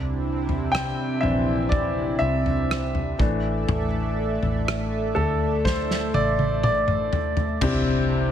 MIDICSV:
0, 0, Header, 1, 6, 480
1, 0, Start_track
1, 0, Tempo, 983607
1, 1799, Time_signature, 4, 2, 24, 8
1, 4058, End_track
2, 0, Start_track
2, 0, Title_t, "Upright piano"
2, 0, Program_c, 0, 0
2, 0, Control_c, 0, 64, 127
2, 350, Note_on_c, 0, 79, 84
2, 588, Note_on_c, 0, 76, 82
2, 595, Note_on_c, 0, 52, 47
2, 598, Note_on_c, 0, 60, 42
2, 600, Note_on_c, 0, 62, 53
2, 601, Note_off_c, 0, 79, 0
2, 825, Note_on_c, 0, 74, 74
2, 841, Note_off_c, 0, 76, 0
2, 1067, Note_on_c, 0, 76, 90
2, 1079, Note_off_c, 0, 74, 0
2, 1533, Note_off_c, 0, 76, 0
2, 1537, Note_off_c, 0, 52, 0
2, 1539, Note_off_c, 0, 60, 0
2, 1540, Note_off_c, 0, 62, 0
2, 1556, Note_on_c, 0, 52, 50
2, 1559, Note_on_c, 0, 57, 47
2, 1561, Note_on_c, 0, 62, 56
2, 1565, Control_c, 0, 64, 0
2, 1649, Control_c, 0, 64, 127
2, 1876, Note_off_c, 0, 52, 0
2, 1878, Note_off_c, 0, 57, 0
2, 1879, Note_off_c, 0, 62, 0
2, 2513, Note_on_c, 0, 69, 71
2, 2756, Note_on_c, 0, 72, 76
2, 2763, Note_off_c, 0, 69, 0
2, 2980, Note_off_c, 0, 72, 0
2, 2998, Note_on_c, 0, 74, 93
2, 3232, Note_off_c, 0, 74, 0
2, 3239, Note_on_c, 0, 74, 85
2, 3579, Note_off_c, 0, 74, 0
2, 3720, Note_on_c, 0, 60, 80
2, 3721, Note_on_c, 0, 62, 78
2, 3722, Note_on_c, 0, 48, 68
2, 3723, Note_on_c, 0, 64, 72
2, 3725, Note_on_c, 0, 67, 84
2, 3726, Control_c, 0, 64, 0
2, 3812, Control_c, 0, 64, 127
2, 4058, Note_off_c, 0, 48, 0
2, 4058, Note_off_c, 0, 60, 0
2, 4058, Note_off_c, 0, 62, 0
2, 4058, Note_off_c, 0, 64, 0
2, 4058, Note_off_c, 0, 67, 0
2, 4058, End_track
3, 0, Start_track
3, 0, Title_t, "Analog synth pad"
3, 0, Program_c, 1, 89
3, 0, Note_on_c, 1, 48, 77
3, 0, Note_on_c, 1, 60, 69
3, 0, Note_on_c, 1, 62, 67
3, 0, Note_on_c, 1, 64, 79
3, 1538, Note_off_c, 1, 62, 0
3, 1543, Note_off_c, 1, 48, 0
3, 1543, Note_off_c, 1, 60, 0
3, 1543, Note_off_c, 1, 64, 0
3, 1562, Note_on_c, 1, 69, 68
3, 1562, Note_on_c, 1, 74, 70
3, 1563, Note_on_c, 1, 57, 74
3, 1563, Note_on_c, 1, 76, 89
3, 3701, Note_off_c, 1, 57, 0
3, 3701, Note_off_c, 1, 69, 0
3, 3701, Note_off_c, 1, 74, 0
3, 3701, Note_off_c, 1, 76, 0
3, 3714, Note_on_c, 1, 60, 71
3, 3715, Note_on_c, 1, 48, 77
3, 3715, Note_on_c, 1, 62, 69
3, 3715, Note_on_c, 1, 64, 85
3, 4058, Note_off_c, 1, 48, 0
3, 4058, Note_off_c, 1, 60, 0
3, 4058, Note_off_c, 1, 62, 0
3, 4058, Note_off_c, 1, 64, 0
3, 4058, End_track
4, 0, Start_track
4, 0, Title_t, "Fingered electric bass"
4, 0, Program_c, 2, 33
4, 0, Note_on_c, 2, 36, 91
4, 459, Note_off_c, 2, 36, 0
4, 599, Note_on_c, 2, 34, 79
4, 1059, Note_off_c, 2, 34, 0
4, 1079, Note_on_c, 2, 36, 87
4, 1539, Note_off_c, 2, 36, 0
4, 1558, Note_on_c, 2, 33, 90
4, 1782, Note_off_c, 2, 33, 0
4, 1798, Note_on_c, 2, 33, 85
4, 2139, Note_off_c, 2, 33, 0
4, 2159, Note_on_c, 2, 33, 75
4, 2500, Note_off_c, 2, 33, 0
4, 2517, Note_on_c, 2, 38, 73
4, 2978, Note_off_c, 2, 38, 0
4, 2997, Note_on_c, 2, 33, 85
4, 3458, Note_off_c, 2, 33, 0
4, 3717, Note_on_c, 2, 36, 94
4, 4058, Note_off_c, 2, 36, 0
4, 4058, End_track
5, 0, Start_track
5, 0, Title_t, "Impact"
5, 0, Program_c, 3, 103
5, 3718, Note_on_c, 3, 60, 64
5, 4058, Note_off_c, 3, 60, 0
5, 4058, End_track
6, 0, Start_track
6, 0, Title_t, "Drums"
6, 238, Note_on_c, 9, 43, 57
6, 287, Note_off_c, 9, 43, 0
6, 365, Note_on_c, 9, 37, 99
6, 413, Note_off_c, 9, 37, 0
6, 602, Note_on_c, 9, 43, 57
6, 650, Note_off_c, 9, 43, 0
6, 839, Note_on_c, 9, 36, 84
6, 840, Note_on_c, 9, 43, 56
6, 888, Note_off_c, 9, 36, 0
6, 889, Note_off_c, 9, 43, 0
6, 1200, Note_on_c, 9, 43, 51
6, 1249, Note_off_c, 9, 43, 0
6, 1324, Note_on_c, 9, 37, 93
6, 1372, Note_off_c, 9, 37, 0
6, 1438, Note_on_c, 9, 43, 55
6, 1487, Note_off_c, 9, 43, 0
6, 1559, Note_on_c, 9, 36, 91
6, 1608, Note_off_c, 9, 36, 0
6, 1798, Note_on_c, 9, 43, 92
6, 1847, Note_off_c, 9, 43, 0
6, 2160, Note_on_c, 9, 43, 58
6, 2209, Note_off_c, 9, 43, 0
6, 2285, Note_on_c, 9, 37, 99
6, 2334, Note_off_c, 9, 37, 0
6, 2519, Note_on_c, 9, 43, 58
6, 2568, Note_off_c, 9, 43, 0
6, 2758, Note_on_c, 9, 36, 77
6, 2764, Note_on_c, 9, 38, 51
6, 2807, Note_off_c, 9, 36, 0
6, 2813, Note_off_c, 9, 38, 0
6, 2883, Note_on_c, 9, 38, 47
6, 2932, Note_off_c, 9, 38, 0
6, 2997, Note_on_c, 9, 48, 72
6, 3046, Note_off_c, 9, 48, 0
6, 3118, Note_on_c, 9, 48, 55
6, 3167, Note_off_c, 9, 48, 0
6, 3238, Note_on_c, 9, 47, 85
6, 3287, Note_off_c, 9, 47, 0
6, 3356, Note_on_c, 9, 45, 69
6, 3405, Note_off_c, 9, 45, 0
6, 3478, Note_on_c, 9, 43, 82
6, 3526, Note_off_c, 9, 43, 0
6, 3595, Note_on_c, 9, 43, 78
6, 3644, Note_off_c, 9, 43, 0
6, 3715, Note_on_c, 9, 43, 89
6, 3715, Note_on_c, 9, 49, 86
6, 3717, Note_on_c, 9, 36, 109
6, 3764, Note_off_c, 9, 43, 0
6, 3764, Note_off_c, 9, 49, 0
6, 3766, Note_off_c, 9, 36, 0
6, 4058, End_track
0, 0, End_of_file